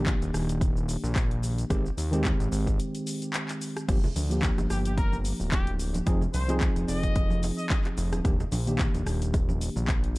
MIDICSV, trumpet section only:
0, 0, Header, 1, 2, 480
1, 0, Start_track
1, 0, Tempo, 545455
1, 1499, Time_signature, 4, 2, 24, 8
1, 8962, End_track
2, 0, Start_track
2, 0, Title_t, "Trumpet section"
2, 0, Program_c, 0, 61
2, 4139, Note_on_c, 0, 67, 93
2, 4224, Note_off_c, 0, 67, 0
2, 4272, Note_on_c, 0, 67, 79
2, 4340, Note_off_c, 0, 67, 0
2, 4379, Note_on_c, 0, 70, 94
2, 4560, Note_off_c, 0, 70, 0
2, 4860, Note_on_c, 0, 67, 91
2, 5040, Note_off_c, 0, 67, 0
2, 5577, Note_on_c, 0, 72, 94
2, 5759, Note_off_c, 0, 72, 0
2, 6059, Note_on_c, 0, 75, 100
2, 6539, Note_off_c, 0, 75, 0
2, 6671, Note_on_c, 0, 75, 92
2, 6740, Note_off_c, 0, 75, 0
2, 6779, Note_on_c, 0, 75, 78
2, 6864, Note_off_c, 0, 75, 0
2, 8962, End_track
0, 0, End_of_file